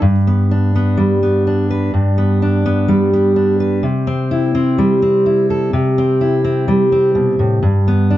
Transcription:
0.02 1.92 G2 medium
0.27 0.75 B3 medium
0.51 1.46 D4 medium
0.75 1.22 B3 medium
0.97 2.88 G3 medium
1.23 1.91 B3 medium
1.47 2.41 D4 medium
1.71 1.91 B4 medium
1.94 3.83 G2 medium
2.18 2.64 B3 medium
2.42 3.35 D4 medium
2.66 3.12 B3 medium
2.88 4.78 G3 medium
3.13 3.81 B3 medium
3.36 3.83 D4 medium
3.60 3.81 B4 medium
3.83 5.72 C3 medium
4.07 4.54 C4 medium
4.31 5.25 E4 medium
4.55 5.01 C4 medium
4.78 6.67 G3 medium
5.02 5.70 C4 medium
5.26 5.70 E4 medium
5.50 5.71 A4 medium
5.73 7.62 C3 medium
5.98 6.43 C4 medium
6.21 7.60 E4 medium
6.44 6.91 C4 medium
6.68 8.18 G3 medium
6.92 7.60 C4 medium
7.15 7.39 B2 medium
7.39 7.62 A2 medium
7.63 8.18 G2 medium
7.88 8.18 B3 medium
8.11 8.18 D4 medium

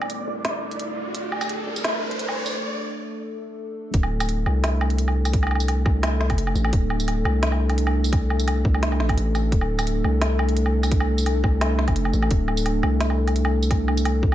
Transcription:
0.00 0.26 C2 medium
0.00 14.35 A3 medium
0.00 14.35 D4 medium
0.00 14.35 A4 medium
0.00 2.54 D5 medium
0.00 riser medium
0.00 low woodblock medium
0.10 closed hi-hat medium
0.27 1.14 C2 medium
0.45 snare loud
0.45 closed hi-hat medium
0.71 closed hi-hat soft
0.80 closed hi-hat medium
1.15 1.66 D1 loud
1.15 closed hi-hat medium
1.32 low woodblock medium
1.41 tambourine medium
1.41 low woodblock medium
1.49 closed hi-hat medium
1.67 2.54 C2 medium
1.76 tambourine medium
1.84 snare loud
1.84 closed hi-hat medium
2.11 closed hi-hat soft
2.19 closed hi-hat medium
2.29 low woodblock medium
2.46 tambourine medium
3.94 4.45 D1 loud
3.94 kick loud
3.94 closed hi-hat medium
4.03 low woodblock medium
4.20 tambourine medium
4.20 low woodblock medium
4.29 closed hi-hat medium
4.46 5.85 C2 medium
4.46 low woodblock medium
4.64 snare loud
4.64 closed hi-hat medium
4.64 low woodblock medium
4.81 low woodblock medium
4.90 closed hi-hat soft
4.98 closed hi-hat medium
5.08 low woodblock medium
5.25 tambourine medium
5.25 low woodblock medium
5.33 kick loud
5.33 closed hi-hat medium
5.43 low woodblock medium
5.47 low woodblock medium
5.51 low woodblock medium
5.55 low woodblock soft
5.60 tambourine medium
5.68 closed hi-hat medium
5.68 low woodblock medium
5.86 6.31 C2 medium
5.86 kick loud
5.86 low woodblock medium
6.03 snare loud
6.03 closed hi-hat medium
6.03 low woodblock medium
6.21 snare medium
6.30 6.54 F1 medium
6.30 kick medium
6.30 closed hi-hat soft
6.30 low woodblock medium
6.38 closed hi-hat medium
6.47 low woodblock medium
6.55 6.71 A1 loud
6.55 tambourine soft
6.64 low woodblock medium
6.73 7.24 D1 loud
6.73 kick loud
6.73 closed hi-hat medium
6.90 low woodblock medium
7.00 tambourine medium
7.08 closed hi-hat medium
7.08 low woodblock medium
7.25 8.64 C2 medium
7.25 low woodblock medium
7.43 snare loud
7.43 closed hi-hat medium
7.52 low woodblock soft
7.70 closed hi-hat soft
7.70 low woodblock soft
7.78 closed hi-hat medium
7.87 low woodblock medium
8.04 tambourine medium
8.13 kick loud
8.13 closed hi-hat medium
8.13 low woodblock soft
8.30 low woodblock medium
8.40 tambourine medium
8.48 closed hi-hat medium
8.48 low woodblock medium
8.65 9.01 C2 medium
8.65 kick loud
8.74 low woodblock medium
8.83 snare loud
8.83 closed hi-hat medium
8.92 low woodblock soft
9.00 9.16 A1 loud
9.00 snare medium
9.09 kick medium
9.09 closed hi-hat soft
9.09 low woodblock medium
9.17 9.51 A1 medium
9.17 closed hi-hat medium
9.35 tambourine soft
9.35 low woodblock soft
9.52 10.03 D1 loud
9.52 kick loud
9.52 closed hi-hat medium
9.61 low woodblock medium
9.79 tambourine medium
9.79 low woodblock medium
9.87 closed hi-hat medium
10.04 11.43 C2 medium
10.04 low woodblock soft
10.22 snare loud
10.22 closed hi-hat medium
10.22 low woodblock soft
10.39 low woodblock medium
10.49 closed hi-hat soft
10.57 closed hi-hat medium
10.66 low woodblock medium
10.83 tambourine medium
10.83 low woodblock soft
10.91 kick loud
10.91 closed hi-hat medium
11.00 low woodblock medium
11.18 tambourine medium
11.26 closed hi-hat medium
11.26 low woodblock medium
11.44 11.89 C2 medium
11.44 kick loud
11.44 low woodblock medium
11.61 snare loud
11.61 closed hi-hat medium
11.61 low woodblock medium
11.79 snare medium
11.88 12.13 F1 medium
11.88 kick medium
11.88 closed hi-hat soft
11.88 low woodblock medium
11.96 closed hi-hat medium
12.05 low woodblock medium
12.13 12.30 A1 loud
12.13 tambourine soft
12.22 low woodblock medium
12.31 12.82 D1 loud
12.31 kick loud
12.31 closed hi-hat medium
12.48 low woodblock medium
12.57 tambourine medium
12.66 closed hi-hat medium
12.66 low woodblock medium
12.83 14.22 C2 medium
12.83 low woodblock medium
13.01 snare loud
13.01 closed hi-hat medium
13.10 low woodblock soft
13.28 closed hi-hat soft
13.28 low woodblock medium
13.36 closed hi-hat medium
13.45 low woodblock medium
13.63 tambourine medium
13.71 kick loud
13.71 closed hi-hat medium
13.71 low woodblock medium
13.88 low woodblock medium
13.97 closed hi-hat soft
13.97 tambourine medium
14.05 closed hi-hat medium
14.05 low woodblock medium
14.23 14.35 C2 medium
14.23 kick loud

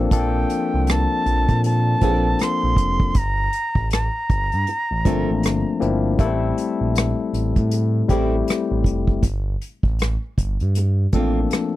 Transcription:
0.00 0.11 F3 medium
0.00 0.11 A#3 medium
0.00 0.12 C4 medium
0.00 0.12 D4 medium
0.00 0.13 A4 medium
0.11 0.45 A#1 loud
0.11 1.46 F3 medium
0.11 1.46 A#3 medium
0.11 1.47 C4 medium
0.11 1.47 D4 medium
0.11 1.47 A4 medium
0.11 kick loud
0.11 closed hi-hat medium
0.15 0.93 G5 medium
0.50 closed hi-hat medium
0.74 1.07 C2 medium
0.87 cross-stick loud
0.87 closed hi-hat medium
0.91 1.65 A5 medium
1.26 1.46 A#1 loud
1.26 closed hi-hat medium
1.49 1.95 A#2 medium
1.49 kick medium
1.49 closed hi-hat soft
1.64 2.44 A5 loud
1.64 muted nylon-string guitar stroke soft
1.64 closed hi-hat medium
2.01 2.35 A#1 medium
2.01 3.15 F3 medium
2.01 2.26 F3 medium
2.01 3.15 A#3 medium
2.01 3.16 C4 medium
2.01 2.26 C4 medium
2.01 3.16 D4 medium
2.01 2.27 D4 medium
2.01 3.16 A4 medium
2.01 2.27 A4 medium
2.01 kick medium
2.01 closed hi-hat medium
2.39 3.19 C6 loud
2.39 cross-stick medium
2.39 closed hi-hat medium
2.63 2.76 A#1 medium
2.76 3.10 F1 medium
2.76 kick medium
2.76 closed hi-hat medium
3.00 kick medium
3.15 3.49 G1 loud
3.15 3.92 A#5 loud
3.15 kick loud
3.15 closed hi-hat medium
3.53 closed hi-hat medium
3.75 4.09 A1 medium
3.75 kick medium
3.91 5.78 A#5 medium
3.91 cross-stick loud
3.91 closed hi-hat medium
4.30 4.50 G1 medium
4.30 kick medium
4.30 closed hi-hat medium
4.52 4.66 G2 medium
4.52 closed hi-hat soft
4.67 muted nylon-string guitar stroke soft
4.67 closed hi-hat medium
4.91 5.04 A1 medium
5.05 5.26 G1 medium
5.05 5.73 F3 medium
5.05 5.74 A3 medium
5.05 5.73 A#3 medium
5.05 5.30 A#3 medium
5.05 5.73 C4 medium
5.05 5.30 C4 medium
5.05 5.74 D4 medium
5.05 5.30 F4 medium
5.05 5.30 A4 medium
5.05 kick medium
5.05 closed hi-hat medium
5.30 5.42 A1 medium
5.43 5.64 G1 medium
5.43 cross-stick medium
5.43 closed hi-hat medium
5.80 6.15 G1 medium
5.80 6.14 F3 medium
5.80 6.15 A#3 medium
5.80 6.15 C4 medium
5.80 6.15 D4 medium
5.80 6.15 E4 medium
5.80 closed hi-hat medium
6.19 6.52 A1 loud
6.19 7.54 G3 medium
6.19 7.54 A3 medium
6.19 6.27 A#3 medium
6.19 7.55 E4 medium
6.19 7.55 A4 loud
6.19 kick loud
6.19 closed hi-hat medium
6.26 7.58 C4 medium
6.58 closed hi-hat medium
6.81 7.14 A#1 medium
6.95 cross-stick loud
6.95 closed hi-hat medium
7.33 7.54 A1 medium
7.33 closed hi-hat medium
7.56 8.03 A2 medium
7.56 kick medium
7.56 closed hi-hat soft
7.71 muted nylon-string guitar stroke soft
7.71 closed hi-hat medium
8.08 8.43 A1 medium
8.08 9.22 G3 medium
8.08 8.34 G3 medium
8.08 9.23 A3 medium
8.08 9.23 C4 medium
8.08 8.34 C4 medium
8.08 9.23 E4 medium
8.08 8.35 E4 medium
8.08 9.23 G4 medium
8.08 8.35 A4 medium
8.08 kick medium
8.08 closed hi-hat medium
8.48 cross-stick medium
8.48 closed hi-hat medium
8.71 8.84 A1 medium
8.84 9.18 F1 medium
8.84 kick medium
8.84 closed hi-hat medium
9.07 kick medium
9.23 9.56 G1 medium
9.23 kick loud
9.23 closed hi-hat medium
9.62 closed hi-hat medium
9.83 10.17 A1 medium
9.83 kick medium
9.99 cross-stick loud
9.99 closed hi-hat medium
10.38 10.58 G1 medium
10.38 kick medium
10.38 closed hi-hat medium
10.60 11.07 G2 medium
10.60 closed hi-hat soft
10.75 muted nylon-string guitar stroke soft
10.75 closed hi-hat medium
11.13 11.46 A1 medium
11.13 11.76 F3 medium
11.13 11.21 A3 medium
11.13 11.38 A#3 medium
11.13 11.76 C4 medium
11.13 11.38 C4 medium
11.13 11.76 D4 medium
11.13 11.38 F4 medium
11.13 11.76 A4 medium
11.13 11.39 A4 medium
11.13 kick medium
11.13 closed hi-hat medium
11.19 11.76 A#3 medium
11.51 cross-stick medium
11.51 closed hi-hat medium

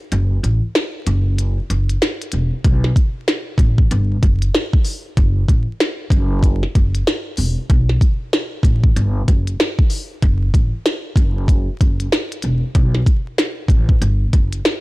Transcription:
0.12 0.37 F#1 loud
0.12 closed hi-hat medium
0.43 0.59 A1 medium
0.43 closed hi-hat medium
0.75 snare loud
0.75 closed hi-hat medium
1.07 1.57 F#1 loud
1.07 closed hi-hat medium
1.38 closed hi-hat medium
1.70 1.95 F#1 medium
1.70 closed hi-hat medium
1.90 closed hi-hat medium
2.02 snare loud
2.02 closed hi-hat loud
2.22 closed hi-hat medium
2.32 2.49 E1 medium
2.32 closed hi-hat medium
2.64 2.90 B1 loud
2.64 kick loud
2.64 closed hi-hat medium
2.84 snare soft
2.96 kick loud
2.96 closed hi-hat medium
3.28 snare loud
3.28 closed hi-hat medium
3.58 3.83 A1 loud
3.58 kick medium
3.58 closed hi-hat medium
3.78 kick medium
3.91 4.16 G1 loud
3.91 closed hi-hat medium
4.23 4.48 F#1 medium
4.23 kick medium
4.23 closed hi-hat medium
4.42 closed hi-hat medium
4.55 snare loud
4.55 closed hi-hat loud
4.73 kick loud
4.84 open hi-hat medium
5.17 5.42 F#1 loud
5.17 kick loud
5.17 closed hi-hat medium
5.48 5.64 A1 medium
5.48 kick medium
5.48 closed hi-hat medium
5.80 snare loud
5.80 closed hi-hat medium
6.10 6.61 F#1 loud
6.10 kick medium
6.10 closed hi-hat medium
6.43 kick loud
6.43 closed hi-hat medium
6.63 snare soft
6.75 7.00 F#1 medium
6.75 kick medium
6.75 closed hi-hat medium
6.95 closed hi-hat medium
7.07 snare loud
7.07 closed hi-hat loud
7.37 7.54 E1 medium
7.37 open hi-hat medium
7.70 7.95 B1 loud
7.70 kick loud
7.70 closed hi-hat medium
7.89 snare soft
8.01 kick loud
8.01 closed hi-hat medium
8.33 snare loud
8.33 closed hi-hat medium
8.63 8.89 A1 loud
8.63 kick medium
8.63 closed hi-hat medium
8.84 kick loud
8.96 9.21 G1 loud
8.96 closed hi-hat medium
9.28 9.53 F#1 medium
9.28 kick medium
9.28 closed hi-hat medium
9.47 closed hi-hat medium
9.60 snare loud
9.60 closed hi-hat loud
9.79 kick loud
9.90 open hi-hat medium
10.22 10.48 F#1 loud
10.22 kick loud
10.22 closed hi-hat medium
10.54 10.70 A1 medium
10.54 kick medium
10.54 closed hi-hat medium
10.86 snare loud
10.86 closed hi-hat medium
11.16 11.66 F#1 loud
11.16 kick medium
11.16 closed hi-hat medium
11.48 kick loud
11.48 closed hi-hat medium
11.81 12.06 F#1 medium
11.81 kick medium
11.81 closed hi-hat medium
12.00 closed hi-hat medium
12.12 snare loud
12.12 closed hi-hat loud
12.32 closed hi-hat medium
12.42 12.59 E1 medium
12.42 closed hi-hat medium
12.75 13.00 B1 loud
12.75 kick loud
12.75 closed hi-hat medium
12.95 snare soft
13.06 kick loud
13.06 closed hi-hat medium
13.38 snare loud
13.38 closed hi-hat medium
13.68 13.94 A1 loud
13.68 kick medium
13.68 closed hi-hat medium
13.89 kick medium
14.01 14.26 G1 loud
14.01 closed hi-hat medium
14.33 14.58 F#1 medium
14.33 kick medium
14.33 closed hi-hat medium
14.53 closed hi-hat medium
14.65 snare loud
14.65 closed hi-hat loud

